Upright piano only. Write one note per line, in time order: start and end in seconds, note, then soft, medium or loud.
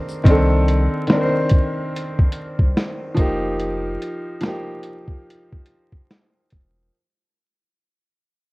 0.00 0.24 D#3 soft
0.00 0.28 A#3 medium
0.00 0.26 C4 medium
0.00 0.27 D4 medium
0.00 0.21 D#4 medium
0.00 0.27 A#4 medium
0.00 0.28 C5 medium
0.24 0.99 D#3 medium
0.24 1.00 C4 medium
0.28 1.01 D4 medium
0.28 1.03 A4 medium
1.07 2.57 D#3 medium
1.07 2.58 C4 medium
1.12 2.59 D4 medium
1.12 1.19 A#4 medium
1.21 2.64 C5 medium
3.14 4.28 F3 medium
3.14 4.29 A#3 medium
3.19 4.30 D#4 medium
3.19 4.31 G4 medium
4.41 5.90 F3 medium
4.41 5.92 A#3 medium
4.45 5.93 D#4 medium
4.45 5.94 G4 medium